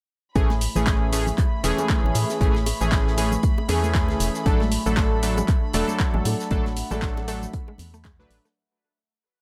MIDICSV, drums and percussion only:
0, 0, Header, 1, 2, 480
1, 0, Start_track
1, 0, Key_signature, 3, "major"
1, 0, Tempo, 512821
1, 334, Time_signature, 4, 2, 24, 8
1, 8812, End_track
2, 0, Start_track
2, 0, Title_t, "Drums"
2, 334, Note_on_c, 9, 36, 127
2, 335, Note_on_c, 9, 82, 36
2, 337, Note_on_c, 9, 42, 91
2, 428, Note_off_c, 9, 36, 0
2, 429, Note_off_c, 9, 82, 0
2, 430, Note_off_c, 9, 42, 0
2, 467, Note_on_c, 9, 38, 50
2, 469, Note_on_c, 9, 60, 50
2, 470, Note_on_c, 9, 63, 95
2, 561, Note_off_c, 9, 38, 0
2, 562, Note_off_c, 9, 60, 0
2, 564, Note_off_c, 9, 63, 0
2, 574, Note_on_c, 9, 42, 66
2, 574, Note_on_c, 9, 46, 107
2, 575, Note_on_c, 9, 82, 83
2, 667, Note_off_c, 9, 46, 0
2, 668, Note_off_c, 9, 42, 0
2, 669, Note_off_c, 9, 82, 0
2, 705, Note_on_c, 9, 64, 88
2, 712, Note_on_c, 9, 82, 48
2, 799, Note_off_c, 9, 64, 0
2, 806, Note_off_c, 9, 82, 0
2, 814, Note_on_c, 9, 36, 123
2, 814, Note_on_c, 9, 39, 127
2, 815, Note_on_c, 9, 38, 113
2, 815, Note_on_c, 9, 82, 36
2, 816, Note_on_c, 9, 60, 75
2, 819, Note_on_c, 9, 42, 95
2, 908, Note_off_c, 9, 36, 0
2, 908, Note_off_c, 9, 38, 0
2, 908, Note_off_c, 9, 39, 0
2, 909, Note_off_c, 9, 60, 0
2, 909, Note_off_c, 9, 82, 0
2, 913, Note_off_c, 9, 42, 0
2, 1053, Note_on_c, 9, 42, 74
2, 1053, Note_on_c, 9, 63, 62
2, 1055, Note_on_c, 9, 46, 104
2, 1056, Note_on_c, 9, 82, 81
2, 1146, Note_off_c, 9, 63, 0
2, 1147, Note_off_c, 9, 42, 0
2, 1148, Note_off_c, 9, 46, 0
2, 1149, Note_off_c, 9, 82, 0
2, 1189, Note_on_c, 9, 64, 84
2, 1192, Note_on_c, 9, 82, 52
2, 1282, Note_off_c, 9, 64, 0
2, 1286, Note_off_c, 9, 82, 0
2, 1292, Note_on_c, 9, 60, 55
2, 1294, Note_on_c, 9, 36, 117
2, 1294, Note_on_c, 9, 39, 38
2, 1295, Note_on_c, 9, 82, 33
2, 1299, Note_on_c, 9, 42, 92
2, 1385, Note_off_c, 9, 60, 0
2, 1388, Note_off_c, 9, 36, 0
2, 1388, Note_off_c, 9, 39, 0
2, 1389, Note_off_c, 9, 82, 0
2, 1393, Note_off_c, 9, 42, 0
2, 1534, Note_on_c, 9, 46, 106
2, 1536, Note_on_c, 9, 82, 84
2, 1537, Note_on_c, 9, 42, 73
2, 1628, Note_off_c, 9, 46, 0
2, 1629, Note_off_c, 9, 82, 0
2, 1630, Note_off_c, 9, 42, 0
2, 1670, Note_on_c, 9, 63, 94
2, 1671, Note_on_c, 9, 60, 76
2, 1672, Note_on_c, 9, 82, 45
2, 1764, Note_off_c, 9, 60, 0
2, 1764, Note_off_c, 9, 63, 0
2, 1766, Note_off_c, 9, 82, 0
2, 1772, Note_on_c, 9, 38, 109
2, 1774, Note_on_c, 9, 36, 127
2, 1775, Note_on_c, 9, 39, 123
2, 1776, Note_on_c, 9, 82, 35
2, 1779, Note_on_c, 9, 42, 86
2, 1865, Note_off_c, 9, 38, 0
2, 1868, Note_off_c, 9, 36, 0
2, 1868, Note_off_c, 9, 39, 0
2, 1869, Note_off_c, 9, 82, 0
2, 1873, Note_off_c, 9, 42, 0
2, 1926, Note_on_c, 9, 64, 103
2, 2010, Note_on_c, 9, 42, 73
2, 2015, Note_on_c, 9, 46, 114
2, 2016, Note_on_c, 9, 82, 86
2, 2020, Note_off_c, 9, 64, 0
2, 2104, Note_off_c, 9, 42, 0
2, 2108, Note_off_c, 9, 46, 0
2, 2109, Note_off_c, 9, 82, 0
2, 2151, Note_on_c, 9, 38, 58
2, 2152, Note_on_c, 9, 82, 48
2, 2153, Note_on_c, 9, 60, 51
2, 2245, Note_off_c, 9, 38, 0
2, 2246, Note_off_c, 9, 82, 0
2, 2247, Note_off_c, 9, 60, 0
2, 2254, Note_on_c, 9, 36, 127
2, 2255, Note_on_c, 9, 82, 35
2, 2257, Note_on_c, 9, 42, 95
2, 2348, Note_off_c, 9, 36, 0
2, 2349, Note_off_c, 9, 82, 0
2, 2351, Note_off_c, 9, 42, 0
2, 2384, Note_on_c, 9, 63, 94
2, 2388, Note_on_c, 9, 38, 58
2, 2478, Note_off_c, 9, 63, 0
2, 2482, Note_off_c, 9, 38, 0
2, 2493, Note_on_c, 9, 60, 84
2, 2494, Note_on_c, 9, 46, 115
2, 2495, Note_on_c, 9, 82, 81
2, 2498, Note_on_c, 9, 42, 73
2, 2587, Note_off_c, 9, 46, 0
2, 2587, Note_off_c, 9, 60, 0
2, 2589, Note_off_c, 9, 82, 0
2, 2592, Note_off_c, 9, 42, 0
2, 2628, Note_on_c, 9, 64, 86
2, 2632, Note_on_c, 9, 82, 47
2, 2722, Note_off_c, 9, 64, 0
2, 2725, Note_off_c, 9, 82, 0
2, 2734, Note_on_c, 9, 36, 123
2, 2734, Note_on_c, 9, 39, 127
2, 2735, Note_on_c, 9, 42, 89
2, 2735, Note_on_c, 9, 82, 36
2, 2738, Note_on_c, 9, 38, 108
2, 2828, Note_off_c, 9, 36, 0
2, 2828, Note_off_c, 9, 39, 0
2, 2829, Note_off_c, 9, 42, 0
2, 2829, Note_off_c, 9, 82, 0
2, 2832, Note_off_c, 9, 38, 0
2, 2879, Note_on_c, 9, 38, 48
2, 2971, Note_on_c, 9, 63, 65
2, 2973, Note_off_c, 9, 38, 0
2, 2974, Note_on_c, 9, 46, 110
2, 2975, Note_on_c, 9, 60, 58
2, 2975, Note_on_c, 9, 82, 80
2, 2976, Note_on_c, 9, 42, 71
2, 3065, Note_off_c, 9, 63, 0
2, 3068, Note_off_c, 9, 46, 0
2, 3069, Note_off_c, 9, 60, 0
2, 3069, Note_off_c, 9, 82, 0
2, 3070, Note_off_c, 9, 42, 0
2, 3107, Note_on_c, 9, 64, 91
2, 3112, Note_on_c, 9, 82, 50
2, 3201, Note_off_c, 9, 64, 0
2, 3205, Note_off_c, 9, 82, 0
2, 3212, Note_on_c, 9, 42, 98
2, 3214, Note_on_c, 9, 36, 127
2, 3215, Note_on_c, 9, 82, 34
2, 3305, Note_off_c, 9, 42, 0
2, 3308, Note_off_c, 9, 36, 0
2, 3309, Note_off_c, 9, 82, 0
2, 3351, Note_on_c, 9, 60, 80
2, 3444, Note_off_c, 9, 60, 0
2, 3450, Note_on_c, 9, 42, 70
2, 3453, Note_on_c, 9, 46, 116
2, 3455, Note_on_c, 9, 82, 78
2, 3460, Note_on_c, 9, 64, 86
2, 3544, Note_off_c, 9, 42, 0
2, 3547, Note_off_c, 9, 46, 0
2, 3548, Note_off_c, 9, 82, 0
2, 3554, Note_off_c, 9, 64, 0
2, 3592, Note_on_c, 9, 82, 45
2, 3593, Note_on_c, 9, 63, 102
2, 3686, Note_off_c, 9, 82, 0
2, 3687, Note_off_c, 9, 63, 0
2, 3694, Note_on_c, 9, 36, 127
2, 3695, Note_on_c, 9, 39, 120
2, 3696, Note_on_c, 9, 42, 90
2, 3696, Note_on_c, 9, 82, 32
2, 3699, Note_on_c, 9, 38, 119
2, 3788, Note_off_c, 9, 36, 0
2, 3788, Note_off_c, 9, 39, 0
2, 3789, Note_off_c, 9, 82, 0
2, 3790, Note_off_c, 9, 42, 0
2, 3793, Note_off_c, 9, 38, 0
2, 3823, Note_on_c, 9, 60, 60
2, 3831, Note_on_c, 9, 38, 60
2, 3917, Note_off_c, 9, 60, 0
2, 3925, Note_off_c, 9, 38, 0
2, 3934, Note_on_c, 9, 46, 120
2, 3935, Note_on_c, 9, 82, 87
2, 3936, Note_on_c, 9, 38, 57
2, 3941, Note_on_c, 9, 42, 65
2, 4028, Note_off_c, 9, 46, 0
2, 4029, Note_off_c, 9, 38, 0
2, 4029, Note_off_c, 9, 82, 0
2, 4034, Note_off_c, 9, 42, 0
2, 4070, Note_on_c, 9, 38, 46
2, 4072, Note_on_c, 9, 82, 46
2, 4164, Note_off_c, 9, 38, 0
2, 4166, Note_off_c, 9, 82, 0
2, 4174, Note_on_c, 9, 36, 125
2, 4174, Note_on_c, 9, 60, 84
2, 4175, Note_on_c, 9, 42, 95
2, 4175, Note_on_c, 9, 82, 31
2, 4267, Note_off_c, 9, 60, 0
2, 4268, Note_off_c, 9, 36, 0
2, 4268, Note_off_c, 9, 42, 0
2, 4269, Note_off_c, 9, 82, 0
2, 4308, Note_on_c, 9, 63, 102
2, 4315, Note_on_c, 9, 38, 52
2, 4401, Note_off_c, 9, 63, 0
2, 4408, Note_off_c, 9, 38, 0
2, 4414, Note_on_c, 9, 46, 114
2, 4415, Note_on_c, 9, 82, 80
2, 4418, Note_on_c, 9, 42, 74
2, 4508, Note_off_c, 9, 46, 0
2, 4509, Note_off_c, 9, 82, 0
2, 4512, Note_off_c, 9, 42, 0
2, 4549, Note_on_c, 9, 64, 86
2, 4552, Note_on_c, 9, 82, 45
2, 4642, Note_off_c, 9, 64, 0
2, 4646, Note_off_c, 9, 82, 0
2, 4649, Note_on_c, 9, 60, 51
2, 4652, Note_on_c, 9, 42, 94
2, 4654, Note_on_c, 9, 36, 127
2, 4654, Note_on_c, 9, 39, 127
2, 4655, Note_on_c, 9, 82, 32
2, 4656, Note_on_c, 9, 38, 122
2, 4743, Note_off_c, 9, 60, 0
2, 4746, Note_off_c, 9, 42, 0
2, 4748, Note_off_c, 9, 36, 0
2, 4748, Note_off_c, 9, 39, 0
2, 4749, Note_off_c, 9, 82, 0
2, 4750, Note_off_c, 9, 38, 0
2, 4894, Note_on_c, 9, 42, 63
2, 4894, Note_on_c, 9, 46, 110
2, 4895, Note_on_c, 9, 82, 77
2, 4897, Note_on_c, 9, 63, 67
2, 4987, Note_off_c, 9, 42, 0
2, 4987, Note_off_c, 9, 46, 0
2, 4989, Note_off_c, 9, 82, 0
2, 4991, Note_off_c, 9, 63, 0
2, 5031, Note_on_c, 9, 82, 48
2, 5034, Note_on_c, 9, 60, 67
2, 5034, Note_on_c, 9, 64, 84
2, 5125, Note_off_c, 9, 82, 0
2, 5127, Note_off_c, 9, 64, 0
2, 5128, Note_off_c, 9, 60, 0
2, 5131, Note_on_c, 9, 42, 95
2, 5134, Note_on_c, 9, 36, 127
2, 5134, Note_on_c, 9, 39, 39
2, 5135, Note_on_c, 9, 82, 33
2, 5224, Note_off_c, 9, 42, 0
2, 5227, Note_off_c, 9, 36, 0
2, 5228, Note_off_c, 9, 39, 0
2, 5229, Note_off_c, 9, 82, 0
2, 5367, Note_on_c, 9, 42, 66
2, 5373, Note_on_c, 9, 46, 113
2, 5375, Note_on_c, 9, 82, 79
2, 5461, Note_off_c, 9, 42, 0
2, 5467, Note_off_c, 9, 46, 0
2, 5468, Note_off_c, 9, 82, 0
2, 5503, Note_on_c, 9, 63, 96
2, 5510, Note_on_c, 9, 60, 51
2, 5512, Note_on_c, 9, 82, 44
2, 5597, Note_off_c, 9, 63, 0
2, 5603, Note_off_c, 9, 60, 0
2, 5606, Note_off_c, 9, 82, 0
2, 5611, Note_on_c, 9, 38, 97
2, 5614, Note_on_c, 9, 36, 127
2, 5614, Note_on_c, 9, 39, 122
2, 5614, Note_on_c, 9, 82, 33
2, 5615, Note_on_c, 9, 42, 83
2, 5705, Note_off_c, 9, 38, 0
2, 5707, Note_off_c, 9, 36, 0
2, 5707, Note_off_c, 9, 39, 0
2, 5708, Note_off_c, 9, 42, 0
2, 5708, Note_off_c, 9, 82, 0
2, 5746, Note_on_c, 9, 64, 106
2, 5839, Note_off_c, 9, 64, 0
2, 5853, Note_on_c, 9, 46, 125
2, 5854, Note_on_c, 9, 60, 78
2, 5855, Note_on_c, 9, 82, 84
2, 5856, Note_on_c, 9, 42, 70
2, 5947, Note_off_c, 9, 46, 0
2, 5948, Note_off_c, 9, 60, 0
2, 5948, Note_off_c, 9, 82, 0
2, 5950, Note_off_c, 9, 42, 0
2, 5990, Note_on_c, 9, 38, 55
2, 5992, Note_on_c, 9, 82, 43
2, 6084, Note_off_c, 9, 38, 0
2, 6085, Note_off_c, 9, 82, 0
2, 6091, Note_on_c, 9, 42, 90
2, 6093, Note_on_c, 9, 36, 127
2, 6094, Note_on_c, 9, 82, 33
2, 6184, Note_off_c, 9, 42, 0
2, 6187, Note_off_c, 9, 36, 0
2, 6188, Note_off_c, 9, 82, 0
2, 6231, Note_on_c, 9, 38, 54
2, 6235, Note_on_c, 9, 63, 96
2, 6325, Note_off_c, 9, 38, 0
2, 6329, Note_off_c, 9, 63, 0
2, 6332, Note_on_c, 9, 60, 47
2, 6333, Note_on_c, 9, 42, 67
2, 6333, Note_on_c, 9, 46, 112
2, 6334, Note_on_c, 9, 82, 77
2, 6426, Note_off_c, 9, 46, 0
2, 6426, Note_off_c, 9, 60, 0
2, 6427, Note_off_c, 9, 42, 0
2, 6428, Note_off_c, 9, 82, 0
2, 6464, Note_on_c, 9, 64, 78
2, 6471, Note_on_c, 9, 82, 44
2, 6557, Note_off_c, 9, 64, 0
2, 6564, Note_off_c, 9, 82, 0
2, 6572, Note_on_c, 9, 38, 127
2, 6574, Note_on_c, 9, 36, 127
2, 6574, Note_on_c, 9, 39, 125
2, 6575, Note_on_c, 9, 42, 82
2, 6575, Note_on_c, 9, 82, 34
2, 6666, Note_off_c, 9, 38, 0
2, 6667, Note_off_c, 9, 36, 0
2, 6667, Note_off_c, 9, 39, 0
2, 6668, Note_off_c, 9, 82, 0
2, 6669, Note_off_c, 9, 42, 0
2, 6706, Note_on_c, 9, 38, 45
2, 6715, Note_on_c, 9, 60, 81
2, 6799, Note_off_c, 9, 38, 0
2, 6808, Note_off_c, 9, 60, 0
2, 6813, Note_on_c, 9, 46, 106
2, 6813, Note_on_c, 9, 63, 70
2, 6815, Note_on_c, 9, 82, 74
2, 6816, Note_on_c, 9, 42, 67
2, 6906, Note_off_c, 9, 63, 0
2, 6907, Note_off_c, 9, 46, 0
2, 6908, Note_off_c, 9, 82, 0
2, 6909, Note_off_c, 9, 42, 0
2, 6951, Note_on_c, 9, 82, 45
2, 6957, Note_on_c, 9, 64, 83
2, 7045, Note_off_c, 9, 82, 0
2, 7050, Note_off_c, 9, 64, 0
2, 7052, Note_on_c, 9, 42, 98
2, 7054, Note_on_c, 9, 36, 127
2, 7055, Note_on_c, 9, 82, 30
2, 7146, Note_off_c, 9, 42, 0
2, 7147, Note_off_c, 9, 36, 0
2, 7149, Note_off_c, 9, 82, 0
2, 7186, Note_on_c, 9, 60, 57
2, 7280, Note_off_c, 9, 60, 0
2, 7285, Note_on_c, 9, 64, 88
2, 7294, Note_on_c, 9, 46, 116
2, 7295, Note_on_c, 9, 42, 69
2, 7295, Note_on_c, 9, 82, 77
2, 7378, Note_off_c, 9, 64, 0
2, 7388, Note_off_c, 9, 42, 0
2, 7388, Note_off_c, 9, 46, 0
2, 7389, Note_off_c, 9, 82, 0
2, 7431, Note_on_c, 9, 63, 96
2, 7432, Note_on_c, 9, 82, 42
2, 7525, Note_off_c, 9, 63, 0
2, 7526, Note_off_c, 9, 82, 0
2, 7533, Note_on_c, 9, 60, 81
2, 7534, Note_on_c, 9, 36, 127
2, 7534, Note_on_c, 9, 39, 115
2, 7535, Note_on_c, 9, 42, 94
2, 7535, Note_on_c, 9, 82, 31
2, 7537, Note_on_c, 9, 38, 127
2, 7627, Note_off_c, 9, 36, 0
2, 7627, Note_off_c, 9, 60, 0
2, 7628, Note_off_c, 9, 39, 0
2, 7629, Note_off_c, 9, 42, 0
2, 7629, Note_off_c, 9, 82, 0
2, 7630, Note_off_c, 9, 38, 0
2, 7670, Note_on_c, 9, 38, 60
2, 7763, Note_off_c, 9, 38, 0
2, 7774, Note_on_c, 9, 46, 119
2, 7775, Note_on_c, 9, 82, 82
2, 7776, Note_on_c, 9, 38, 51
2, 7776, Note_on_c, 9, 42, 63
2, 7868, Note_off_c, 9, 46, 0
2, 7869, Note_off_c, 9, 38, 0
2, 7869, Note_off_c, 9, 82, 0
2, 7870, Note_off_c, 9, 42, 0
2, 7912, Note_on_c, 9, 82, 44
2, 7917, Note_on_c, 9, 38, 53
2, 8006, Note_off_c, 9, 82, 0
2, 8010, Note_off_c, 9, 38, 0
2, 8812, End_track
0, 0, End_of_file